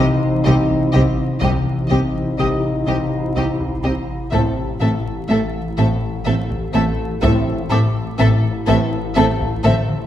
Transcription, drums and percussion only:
0, 0, Header, 1, 2, 480
1, 0, Start_track
1, 0, Key_signature, 0, "minor"
1, 0, Tempo, 967742
1, 705, Time_signature, 3, 2, 24, 8
1, 4993, End_track
2, 0, Start_track
2, 0, Title_t, "Taiko and cinematic ensemble drums"
2, 344, Note_on_c, 9, 41, 61
2, 394, Note_off_c, 9, 41, 0
2, 705, Note_on_c, 9, 41, 82
2, 755, Note_off_c, 9, 41, 0
2, 1788, Note_on_c, 9, 41, 62
2, 1837, Note_off_c, 9, 41, 0
2, 2146, Note_on_c, 9, 41, 82
2, 2195, Note_off_c, 9, 41, 0
2, 3226, Note_on_c, 9, 41, 64
2, 3276, Note_off_c, 9, 41, 0
2, 3587, Note_on_c, 9, 41, 91
2, 3637, Note_off_c, 9, 41, 0
2, 4666, Note_on_c, 9, 41, 72
2, 4716, Note_off_c, 9, 41, 0
2, 4787, Note_on_c, 9, 47, 52
2, 4837, Note_off_c, 9, 47, 0
2, 4907, Note_on_c, 9, 47, 49
2, 4957, Note_off_c, 9, 47, 0
2, 4993, End_track
0, 0, End_of_file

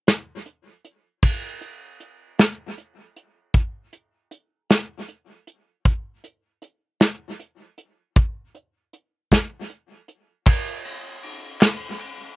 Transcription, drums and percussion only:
0, 0, Header, 1, 2, 480
1, 0, Start_track
1, 0, Tempo, 769231
1, 768, Time_signature, 6, 3, 24, 8
1, 7713, End_track
2, 0, Start_track
2, 0, Title_t, "Drums"
2, 45, Note_on_c, 9, 42, 86
2, 50, Note_on_c, 9, 38, 103
2, 107, Note_off_c, 9, 42, 0
2, 112, Note_off_c, 9, 38, 0
2, 286, Note_on_c, 9, 42, 56
2, 348, Note_off_c, 9, 42, 0
2, 528, Note_on_c, 9, 42, 54
2, 590, Note_off_c, 9, 42, 0
2, 767, Note_on_c, 9, 36, 108
2, 768, Note_on_c, 9, 49, 105
2, 829, Note_off_c, 9, 36, 0
2, 830, Note_off_c, 9, 49, 0
2, 1006, Note_on_c, 9, 42, 62
2, 1068, Note_off_c, 9, 42, 0
2, 1249, Note_on_c, 9, 42, 62
2, 1312, Note_off_c, 9, 42, 0
2, 1489, Note_on_c, 9, 42, 86
2, 1494, Note_on_c, 9, 38, 109
2, 1551, Note_off_c, 9, 42, 0
2, 1556, Note_off_c, 9, 38, 0
2, 1734, Note_on_c, 9, 42, 59
2, 1796, Note_off_c, 9, 42, 0
2, 1974, Note_on_c, 9, 42, 58
2, 2037, Note_off_c, 9, 42, 0
2, 2210, Note_on_c, 9, 36, 107
2, 2210, Note_on_c, 9, 42, 93
2, 2272, Note_off_c, 9, 42, 0
2, 2273, Note_off_c, 9, 36, 0
2, 2451, Note_on_c, 9, 42, 61
2, 2514, Note_off_c, 9, 42, 0
2, 2691, Note_on_c, 9, 42, 68
2, 2753, Note_off_c, 9, 42, 0
2, 2931, Note_on_c, 9, 42, 93
2, 2936, Note_on_c, 9, 38, 106
2, 2994, Note_off_c, 9, 42, 0
2, 2999, Note_off_c, 9, 38, 0
2, 3172, Note_on_c, 9, 42, 63
2, 3235, Note_off_c, 9, 42, 0
2, 3415, Note_on_c, 9, 42, 61
2, 3477, Note_off_c, 9, 42, 0
2, 3652, Note_on_c, 9, 42, 100
2, 3653, Note_on_c, 9, 36, 104
2, 3714, Note_off_c, 9, 42, 0
2, 3715, Note_off_c, 9, 36, 0
2, 3893, Note_on_c, 9, 42, 69
2, 3955, Note_off_c, 9, 42, 0
2, 4130, Note_on_c, 9, 42, 68
2, 4193, Note_off_c, 9, 42, 0
2, 4369, Note_on_c, 9, 42, 98
2, 4374, Note_on_c, 9, 38, 114
2, 4431, Note_off_c, 9, 42, 0
2, 4436, Note_off_c, 9, 38, 0
2, 4615, Note_on_c, 9, 42, 66
2, 4677, Note_off_c, 9, 42, 0
2, 4854, Note_on_c, 9, 42, 59
2, 4916, Note_off_c, 9, 42, 0
2, 5091, Note_on_c, 9, 42, 84
2, 5094, Note_on_c, 9, 36, 119
2, 5154, Note_off_c, 9, 42, 0
2, 5156, Note_off_c, 9, 36, 0
2, 5333, Note_on_c, 9, 42, 61
2, 5395, Note_off_c, 9, 42, 0
2, 5574, Note_on_c, 9, 42, 67
2, 5637, Note_off_c, 9, 42, 0
2, 5814, Note_on_c, 9, 36, 84
2, 5814, Note_on_c, 9, 42, 87
2, 5819, Note_on_c, 9, 38, 107
2, 5876, Note_off_c, 9, 36, 0
2, 5876, Note_off_c, 9, 42, 0
2, 5881, Note_off_c, 9, 38, 0
2, 6051, Note_on_c, 9, 42, 59
2, 6113, Note_off_c, 9, 42, 0
2, 6291, Note_on_c, 9, 42, 60
2, 6354, Note_off_c, 9, 42, 0
2, 6529, Note_on_c, 9, 49, 120
2, 6530, Note_on_c, 9, 36, 115
2, 6530, Note_on_c, 9, 39, 82
2, 6591, Note_off_c, 9, 49, 0
2, 6593, Note_off_c, 9, 36, 0
2, 6593, Note_off_c, 9, 39, 0
2, 6769, Note_on_c, 9, 51, 79
2, 6831, Note_off_c, 9, 51, 0
2, 7007, Note_on_c, 9, 51, 77
2, 7069, Note_off_c, 9, 51, 0
2, 7245, Note_on_c, 9, 39, 85
2, 7245, Note_on_c, 9, 51, 110
2, 7250, Note_on_c, 9, 38, 114
2, 7307, Note_off_c, 9, 39, 0
2, 7308, Note_off_c, 9, 51, 0
2, 7313, Note_off_c, 9, 38, 0
2, 7482, Note_on_c, 9, 39, 26
2, 7483, Note_on_c, 9, 51, 73
2, 7545, Note_off_c, 9, 39, 0
2, 7545, Note_off_c, 9, 51, 0
2, 7713, End_track
0, 0, End_of_file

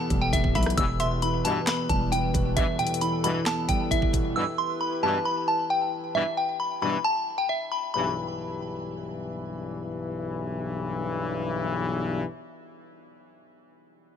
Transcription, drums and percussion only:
0, 0, Header, 1, 2, 480
1, 0, Start_track
1, 0, Key_signature, 1, "minor"
1, 0, Tempo, 447761
1, 832, Time_signature, 4, 2, 24, 8
1, 15187, End_track
2, 0, Start_track
2, 0, Title_t, "Drums"
2, 111, Note_on_c, 9, 36, 93
2, 111, Note_on_c, 9, 42, 82
2, 218, Note_off_c, 9, 36, 0
2, 218, Note_off_c, 9, 42, 0
2, 351, Note_on_c, 9, 36, 88
2, 358, Note_on_c, 9, 42, 87
2, 458, Note_off_c, 9, 36, 0
2, 465, Note_off_c, 9, 42, 0
2, 471, Note_on_c, 9, 36, 97
2, 579, Note_off_c, 9, 36, 0
2, 591, Note_on_c, 9, 36, 97
2, 591, Note_on_c, 9, 42, 48
2, 672, Note_off_c, 9, 42, 0
2, 672, Note_on_c, 9, 42, 68
2, 698, Note_off_c, 9, 36, 0
2, 712, Note_on_c, 9, 37, 102
2, 752, Note_off_c, 9, 42, 0
2, 752, Note_on_c, 9, 42, 87
2, 819, Note_off_c, 9, 37, 0
2, 831, Note_off_c, 9, 42, 0
2, 831, Note_on_c, 9, 36, 127
2, 831, Note_on_c, 9, 42, 98
2, 938, Note_off_c, 9, 36, 0
2, 938, Note_off_c, 9, 42, 0
2, 1070, Note_on_c, 9, 42, 85
2, 1177, Note_off_c, 9, 42, 0
2, 1310, Note_on_c, 9, 42, 76
2, 1418, Note_off_c, 9, 42, 0
2, 1554, Note_on_c, 9, 42, 96
2, 1661, Note_off_c, 9, 42, 0
2, 1792, Note_on_c, 9, 38, 124
2, 1793, Note_on_c, 9, 39, 100
2, 1793, Note_on_c, 9, 42, 80
2, 1899, Note_off_c, 9, 38, 0
2, 1900, Note_off_c, 9, 39, 0
2, 1900, Note_off_c, 9, 42, 0
2, 2031, Note_on_c, 9, 36, 95
2, 2031, Note_on_c, 9, 42, 74
2, 2138, Note_off_c, 9, 36, 0
2, 2138, Note_off_c, 9, 42, 0
2, 2277, Note_on_c, 9, 42, 82
2, 2385, Note_off_c, 9, 42, 0
2, 2511, Note_on_c, 9, 36, 97
2, 2515, Note_on_c, 9, 42, 79
2, 2618, Note_off_c, 9, 36, 0
2, 2622, Note_off_c, 9, 42, 0
2, 2751, Note_on_c, 9, 36, 127
2, 2751, Note_on_c, 9, 42, 99
2, 2858, Note_off_c, 9, 42, 0
2, 2859, Note_off_c, 9, 36, 0
2, 2991, Note_on_c, 9, 42, 56
2, 3072, Note_off_c, 9, 42, 0
2, 3072, Note_on_c, 9, 42, 70
2, 3152, Note_off_c, 9, 42, 0
2, 3152, Note_on_c, 9, 42, 91
2, 3230, Note_off_c, 9, 42, 0
2, 3230, Note_on_c, 9, 42, 69
2, 3338, Note_off_c, 9, 42, 0
2, 3474, Note_on_c, 9, 42, 97
2, 3581, Note_off_c, 9, 42, 0
2, 3712, Note_on_c, 9, 38, 124
2, 3713, Note_on_c, 9, 39, 98
2, 3713, Note_on_c, 9, 42, 76
2, 3819, Note_off_c, 9, 38, 0
2, 3820, Note_off_c, 9, 39, 0
2, 3820, Note_off_c, 9, 42, 0
2, 3952, Note_on_c, 9, 36, 94
2, 3952, Note_on_c, 9, 42, 80
2, 4059, Note_off_c, 9, 36, 0
2, 4059, Note_off_c, 9, 42, 0
2, 4191, Note_on_c, 9, 36, 88
2, 4198, Note_on_c, 9, 42, 85
2, 4299, Note_off_c, 9, 36, 0
2, 4306, Note_off_c, 9, 42, 0
2, 4312, Note_on_c, 9, 36, 102
2, 4419, Note_off_c, 9, 36, 0
2, 4432, Note_on_c, 9, 36, 97
2, 4436, Note_on_c, 9, 42, 79
2, 4539, Note_off_c, 9, 36, 0
2, 4543, Note_off_c, 9, 42, 0
2, 15187, End_track
0, 0, End_of_file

